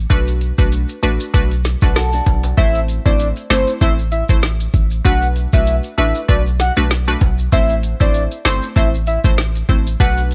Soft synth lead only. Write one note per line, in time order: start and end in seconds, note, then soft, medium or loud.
2.57 2.80 E5 loud
3.06 3.28 D5 medium
3.50 3.73 C5 medium
3.81 3.94 E5 medium
4.12 4.24 E5 medium
5.05 5.27 F#5 loud
5.53 5.76 E5 medium
5.98 6.20 E5 medium
6.29 6.42 D5 medium
6.60 6.72 F#5 medium
7.52 7.75 E5 loud
8.01 8.23 D5 medium
8.45 8.68 C5 medium
8.76 8.89 E5 medium
9.07 9.20 E5 medium
10.00 10.22 F#5 loud